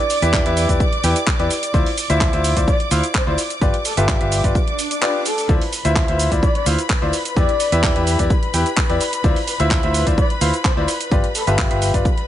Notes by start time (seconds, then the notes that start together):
Already playing: D5 D6
0.10 open hi-hat, cabasa
0.22 E2 E4 G4 B4 E5, closed hi-hat, cabasa
0.33 kick, clap, cabasa
0.46 E2 E4 G4 B4 E5, closed hi-hat
0.57 open hi-hat, cabasa
0.69 E2 E4 G4 B4 D5, kick, closed hi-hat, cabasa
0.80 kick, cabasa
0.93 closed hi-hat
1.04 E2 E4 G4 B4 G5, open hi-hat, cabasa
1.16 closed hi-hat, cabasa
1.27 kick, clap, cabasa
1.39 E2 E4 G4 B4 D5, closed hi-hat
1.51 open hi-hat, cabasa
1.63 closed hi-hat, cabasa
1.74 D2 E4 F4 C5 D5, kick, cabasa
1.86 open hi-hat
1.98 open hi-hat, cabasa
2.10 D2 E4 F4 C5 E5, closed hi-hat, cabasa
2.21 kick, clap, cabasa
2.33 D2 E4 F4 C5 E5, closed hi-hat
2.44 open hi-hat, cabasa
2.57 D2 E4 F4 C5 D5, kick, closed hi-hat, cabasa
2.68 D5, kick, cabasa
2.80 closed hi-hat
2.91 D2 E4 F4 C5 F5, open hi-hat, cabasa
3.04 closed hi-hat, cabasa
3.15 C5, kick, clap, cabasa
3.27 D2 E4 F4 C5 D5
3.38 open hi-hat, cabasa
3.50 closed hi-hat, cabasa
3.61 G1 F4 G4 B4 D5, kick, cabasa
3.74 closed hi-hat
3.85 A4, open hi-hat, cabasa
3.97 G1 F4 G4 A4 B4 E5, closed hi-hat, cabasa
4.08 kick, clap, cabasa
4.21 G1 F4 G4 B4 E5, closed hi-hat
4.32 open hi-hat, cabasa
4.44 G1 F4 G4 B4 D5, kick, closed hi-hat, cabasa
4.55 kick, swell, cabasa
4.68 closed hi-hat
4.79 open hi-hat, cabasa
4.91 closed hi-hat, cabasa
5.02 F4 G4 B4 D5, clap, cabasa
5.25 A4, open hi-hat, cabasa
5.38 open hi-hat, cabasa
5.49 D2 E4 F4 B4 C5 D5 B5, kick, cabasa
5.61 open hi-hat
5.73 open hi-hat, cabasa
5.85 D2 E4 F4 C5 E5, closed hi-hat, cabasa
5.96 kick, clap, cabasa
6.08 D2 E4 F4 C5 E5, closed hi-hat
6.19 open hi-hat, cabasa
6.32 D2 E4 F4 C5 D5, kick, closed hi-hat, cabasa
6.43 D5, kick, cabasa
6.55 D5, closed hi-hat
6.66 D2 E4 F4 C5 F5, open hi-hat, cabasa
6.79 closed hi-hat, cabasa
6.90 kick, clap, cabasa
7.02 D2 E4 F4 C5 D5
7.13 open hi-hat, cabasa
7.25 closed hi-hat, cabasa
7.37 E2 E4 G4 B4 D5, kick, cabasa
7.49 closed hi-hat
7.60 open hi-hat, cabasa
7.72 E2 E4 G4 B4 E5, closed hi-hat, cabasa
7.83 kick, clap, cabasa
7.96 E2 E4 G4 B4 E5, closed hi-hat
8.07 open hi-hat, cabasa
8.19 E2 E4 G4 B4 D5, kick, closed hi-hat, cabasa
8.30 kick, cabasa
8.43 closed hi-hat
8.54 E2 E4 G4 B4 G5, open hi-hat, cabasa
8.66 closed hi-hat, cabasa
8.77 kick, clap, cabasa
8.89 E2 E4 G4 B4 D5, closed hi-hat
9.01 open hi-hat, cabasa
9.13 closed hi-hat, cabasa
9.24 D2 E4 F4 C5 D5, kick, cabasa
9.36 open hi-hat
9.47 open hi-hat, cabasa
9.60 D2 E4 F4 C5 E5, closed hi-hat, cabasa
9.71 kick, clap, cabasa
9.83 D2 E4 F4 C5 E5, closed hi-hat
9.94 open hi-hat, cabasa
10.07 D2 E4 F4 C5 D5, kick, closed hi-hat, cabasa
10.18 D5, kick, cabasa
10.30 closed hi-hat
10.41 D2 E4 F4 C5 F5, open hi-hat, cabasa
10.54 closed hi-hat, cabasa
10.65 C5, kick, clap, cabasa
10.77 D2 E4 F4 C5 D5
10.88 open hi-hat, cabasa
11.01 closed hi-hat, cabasa
11.12 G1 F4 G4 B4 D5, kick, cabasa
11.24 closed hi-hat
11.35 A4, open hi-hat, cabasa
11.47 G1 F4 G4 A4 B4 E5, closed hi-hat, cabasa
11.58 kick, clap, cabasa
11.71 G1 F4 G4 B4 E5, closed hi-hat
11.82 open hi-hat, cabasa
11.94 G1 F4 G4 B4 D5, kick, closed hi-hat, cabasa
12.05 kick, cabasa
12.18 closed hi-hat